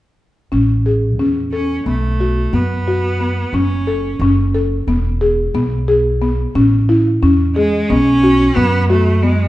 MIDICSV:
0, 0, Header, 1, 4, 480
1, 0, Start_track
1, 0, Key_signature, 3, "major"
1, 0, Tempo, 669643
1, 374, Time_signature, 9, 3, 24, 8
1, 6795, End_track
2, 0, Start_track
2, 0, Title_t, "Marimba"
2, 0, Program_c, 0, 12
2, 371, Note_on_c, 0, 61, 59
2, 503, Note_off_c, 0, 61, 0
2, 616, Note_on_c, 0, 68, 47
2, 747, Note_off_c, 0, 68, 0
2, 856, Note_on_c, 0, 61, 58
2, 987, Note_off_c, 0, 61, 0
2, 1094, Note_on_c, 0, 69, 48
2, 1226, Note_off_c, 0, 69, 0
2, 1336, Note_on_c, 0, 59, 53
2, 1467, Note_off_c, 0, 59, 0
2, 1579, Note_on_c, 0, 66, 50
2, 1709, Note_off_c, 0, 66, 0
2, 1818, Note_on_c, 0, 59, 58
2, 1949, Note_off_c, 0, 59, 0
2, 2062, Note_on_c, 0, 66, 57
2, 2191, Note_off_c, 0, 66, 0
2, 2297, Note_on_c, 0, 59, 53
2, 2428, Note_off_c, 0, 59, 0
2, 2538, Note_on_c, 0, 61, 64
2, 2669, Note_off_c, 0, 61, 0
2, 2775, Note_on_c, 0, 69, 58
2, 2907, Note_off_c, 0, 69, 0
2, 3022, Note_on_c, 0, 61, 65
2, 3151, Note_off_c, 0, 61, 0
2, 3257, Note_on_c, 0, 69, 55
2, 3388, Note_off_c, 0, 69, 0
2, 3497, Note_on_c, 0, 59, 66
2, 3628, Note_off_c, 0, 59, 0
2, 3736, Note_on_c, 0, 68, 55
2, 3867, Note_off_c, 0, 68, 0
2, 3976, Note_on_c, 0, 59, 65
2, 4107, Note_off_c, 0, 59, 0
2, 4216, Note_on_c, 0, 68, 59
2, 4347, Note_off_c, 0, 68, 0
2, 4456, Note_on_c, 0, 59, 58
2, 4587, Note_off_c, 0, 59, 0
2, 4698, Note_on_c, 0, 61, 69
2, 4829, Note_off_c, 0, 61, 0
2, 4939, Note_on_c, 0, 64, 65
2, 5069, Note_off_c, 0, 64, 0
2, 5180, Note_on_c, 0, 61, 67
2, 5310, Note_off_c, 0, 61, 0
2, 5421, Note_on_c, 0, 68, 54
2, 5550, Note_off_c, 0, 68, 0
2, 5664, Note_on_c, 0, 59, 66
2, 5793, Note_off_c, 0, 59, 0
2, 5901, Note_on_c, 0, 66, 61
2, 6031, Note_off_c, 0, 66, 0
2, 6137, Note_on_c, 0, 59, 65
2, 6268, Note_off_c, 0, 59, 0
2, 6379, Note_on_c, 0, 66, 62
2, 6509, Note_off_c, 0, 66, 0
2, 6617, Note_on_c, 0, 59, 60
2, 6748, Note_off_c, 0, 59, 0
2, 6795, End_track
3, 0, Start_track
3, 0, Title_t, "Cello"
3, 0, Program_c, 1, 42
3, 1093, Note_on_c, 1, 61, 68
3, 1317, Note_off_c, 1, 61, 0
3, 1339, Note_on_c, 1, 57, 72
3, 1821, Note_on_c, 1, 59, 65
3, 1831, Note_off_c, 1, 57, 0
3, 2545, Note_on_c, 1, 61, 68
3, 2555, Note_off_c, 1, 59, 0
3, 3081, Note_off_c, 1, 61, 0
3, 5414, Note_on_c, 1, 56, 80
3, 5654, Note_on_c, 1, 61, 95
3, 5665, Note_off_c, 1, 56, 0
3, 6134, Note_on_c, 1, 59, 80
3, 6145, Note_off_c, 1, 61, 0
3, 6373, Note_off_c, 1, 59, 0
3, 6378, Note_on_c, 1, 57, 72
3, 6614, Note_on_c, 1, 56, 74
3, 6624, Note_off_c, 1, 57, 0
3, 6795, Note_off_c, 1, 56, 0
3, 6795, End_track
4, 0, Start_track
4, 0, Title_t, "Upright bass"
4, 0, Program_c, 2, 32
4, 374, Note_on_c, 2, 33, 65
4, 853, Note_off_c, 2, 33, 0
4, 853, Note_on_c, 2, 40, 57
4, 1279, Note_off_c, 2, 40, 0
4, 1333, Note_on_c, 2, 35, 66
4, 1759, Note_off_c, 2, 35, 0
4, 1813, Note_on_c, 2, 42, 68
4, 2452, Note_off_c, 2, 42, 0
4, 2528, Note_on_c, 2, 30, 69
4, 2957, Note_off_c, 2, 30, 0
4, 3006, Note_on_c, 2, 30, 70
4, 3436, Note_off_c, 2, 30, 0
4, 3493, Note_on_c, 2, 28, 67
4, 3920, Note_off_c, 2, 28, 0
4, 3974, Note_on_c, 2, 35, 73
4, 4612, Note_off_c, 2, 35, 0
4, 4695, Note_on_c, 2, 33, 69
4, 5120, Note_off_c, 2, 33, 0
4, 5178, Note_on_c, 2, 40, 68
4, 5602, Note_off_c, 2, 40, 0
4, 5662, Note_on_c, 2, 35, 82
4, 6084, Note_off_c, 2, 35, 0
4, 6140, Note_on_c, 2, 42, 81
4, 6776, Note_off_c, 2, 42, 0
4, 6795, End_track
0, 0, End_of_file